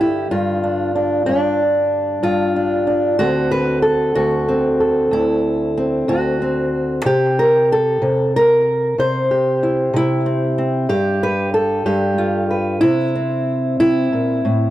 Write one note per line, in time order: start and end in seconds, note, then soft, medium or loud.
0.00 0.30 G2 medium
0.00 3.18 D3 medium
0.00 3.20 G3 medium
0.00 0.31 E4 medium
0.00 0.32 G4 loud
0.31 1.26 G2 medium
0.31 1.59 F4 medium
0.63 0.95 D4 soft
0.95 1.26 D4 soft
1.26 2.22 G2 medium
1.26 2.55 D4 medium
2.23 3.19 G2 medium
2.23 3.18 F4 medium
2.56 2.86 D4 soft
2.87 3.51 D4 soft
3.19 4.15 D2 medium
3.19 7.04 D3 soft
3.19 4.48 C4 soft
3.19 4.14 F#4 loud
3.51 3.82 B4 loud
3.82 4.79 A4 medium
4.15 5.10 D2 medium
4.15 5.12 F#4 medium
4.48 5.76 C4 soft
4.80 7.01 A4 soft
5.11 6.07 D2 medium
5.11 6.08 E4 medium
5.77 6.40 C4 soft
6.08 7.04 D2 medium
6.08 7.05 F#4 medium
6.42 7.01 C4 soft
7.05 8.00 C3 medium
7.05 8.02 G4 medium
7.39 7.70 A#4 medium
7.72 8.35 A4 medium
8.02 8.97 C3 medium
8.36 8.99 A#4 loud
8.98 9.92 C3 medium
8.98 10.59 C5 medium
9.31 10.89 G4 soft
9.63 9.94 E4 soft
9.93 10.86 C3 medium
9.93 10.91 E4 medium
10.26 10.57 C4 soft
10.58 10.86 C4 soft
10.89 11.85 G2 medium
10.89 11.85 G4 medium
11.23 11.53 B4 medium
11.54 12.50 A4 medium
11.86 12.82 G2 medium
11.86 12.80 G4 medium
12.18 12.79 F4 soft
12.51 12.79 B4 soft
12.81 13.79 C3 medium
12.81 13.78 E4 loud
13.15 14.70 C4 soft
13.80 14.12 C3 medium
13.80 14.70 E4 loud
14.13 14.44 A#2 medium
14.45 14.70 A2 medium